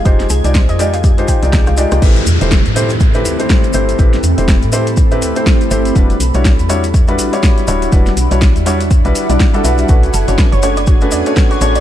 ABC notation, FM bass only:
X:1
M:4/4
L:1/16
Q:"Swing 16ths" 1/4=122
K:Ador
V:1 name="FM bass" clef=bass
=F,,,2 C,, C,,2 =F,,4- F,, z C,,2 C,,2 C,, | A,,,2 E,, E,,,2 A,,4- A,, D,, z3 G,,,2 | A,,,2 E,, E,,,2 A,,4- A,, D,, z3 G,,,2 | E,,,2 B,,, B,,,2 E,,4- E,, A,,, z3 D,,,2 |
E,,,2 B,,, B,,,2 E,,4 B,,, z B,,, z2 B,,,2 | B,,,2 F,,, F,,, z F,,,4- F,,, E,, z3 A,,,2 |]